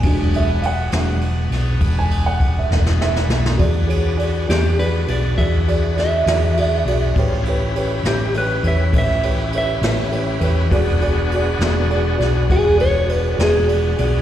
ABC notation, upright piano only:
X:1
M:12/8
L:1/16
Q:3/8=67
K:Emix
V:1 name="Upright piano"
z2 e2 [=f^f]8- [=f^f] g2 f2 e3 e4 | [FGd]2 [FGc]2 [FGd]2 [FGd]2 [FGd]2 [FGd]2 [FGd]2 [FGd]2 [FGd]2 [FGd]2 [FGd]2 [FGd]2 | [=GBc]2 [GBc]2 [GBc]2 [GBc]2 [GBc]2 [GBc]2 [GBc]2 [GBc]2 [GBc]2 [GBc]2 [GBc]2 [GBc]2 | [FGd]2 [FGd]2 [FGd]2 [FGd]2 [FGd]2 [FGd]2 [FGe]2 [FGd]2 [FGd]2 [FGd]2 [FGd]2 [FGd]2 |]
V:2 name="Upright piano" clef=bass
[F,G,D]6 [F,G,D]2 z16 | z24 | z24 | z24 |]